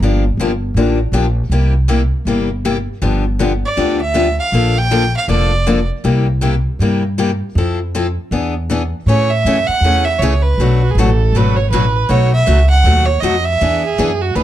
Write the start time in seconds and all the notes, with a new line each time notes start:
0.00 G1 D3 F3 A#3 D4 G4
0.37 G1 D3 F3 A#3 D4 G4
0.74 A1 D3 F3 A#3 D4 G4
1.12 A#1 D3 F3 A#3 D4 G4
1.50 C2 C3 G3 A#3 E4 G4
1.88 C3 G3 A#3 E4 G4
2.25 G1 C3 G3 A#3 E4 G4
2.65 C3 G3 A#3 E4 G4
3.02 G1 D3 F3 B3 D4 G4
3.39 D3 F3 B3 D4 G4
3.65 D5
3.77 D2 D3 F3 B3 D4 G4
4.02 E5
4.14 D3 F3 B3 D4 G4
4.40 F5
4.52 A#1 D3 F3 A#3 D4 A4
4.78 G5
4.91 D3 F3 A#3 D4 A4
5.17 F5
5.28 F1 D3 F3 A#3 D4 A4 D5
5.66 D3 F3 A#3 D4 A4
6.04 C2 C3 G3 A#3 E4 G4
6.41 C3 G3 A#3 E4 G4
6.79 G2 C3 G3 A#3 E4 G4
7.18 C3 G3 A#3 E4 G4
7.55 F2 F3 C4 E4 A4
7.95 F3 C4 E4 A4
8.31 E2 E3 B3 D4 G#4
8.70 E3 B3 D4 G#4
9.06 A2 C#3 E3 A3 C#4 G#4 C#5
9.30 E5
9.44 F#2 C#3 E3 A3 C#4 G#4
9.67 F#5, muted upright bass stroke
9.81 E2 C#3 A3 C#4
9.85 E3 G#4
10.05 E5
10.18 C#2 C#3 E3 A3 C#5
10.23 C#4 G#4
10.42 B4
10.58 B1 B2 F#3 A3 D4 F#4
10.83 F#4
10.91 A1 G#4
10.98 B2 F#3 A3 D4 F#4 A4
11.33 G#1 B2 F#3 A3 D4 B4
11.37 F#4
11.56 C#5
11.70 A1 B2 F#3 A3 D4 F#4 B4
12.09 B1 B2 F#3 A3 D#4 F#4 C#5
12.33 E5
12.46 C#2 B2 F#3 A3 D#4 F#4
12.70 F#5
12.84 D#2 B2 F#3 A3 D#4 F#4
13.06 C#5
13.20 F2 B2 F#3 A3 D#5
13.24 D#4 F#4
13.45 E5
13.61 E2 E3 B3 D4 G#4
13.84 G#4
13.98 F#2 E3 B3 D4 G#4
14.22 F#4
14.35 D2 E3 B3 D4 G#4 B4